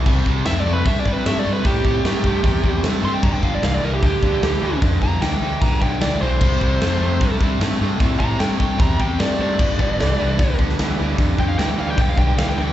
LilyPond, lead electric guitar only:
\new Staff \with { instrumentName = "Lead electric guitar" } { \time 4/4 \key g \mixolydian \tempo 4 = 151 r4 \tuplet 3/2 { e''8 d''8 b'8 e''8 d''8 b'8 e''8 d''8 b'8 } | g'2. r8 c'''16 g''16 | bes''16 g''16 f''16 d''16 f''16 d''16 bes'16 g'16 g'2 | r8 bes''8 g''4 bes''8 g''8 d''8 c''8~ |
c''2~ c''8 r4. | r8 bes''8 g''4 bes''8 g''8 d''8 d''8~ | d''2~ d''8 r4. | r8 g''16 f''16 g''16 g''16 f''16 g''16 g''16 f''16 g''16 g''16 f''16 g''16 g''8 | }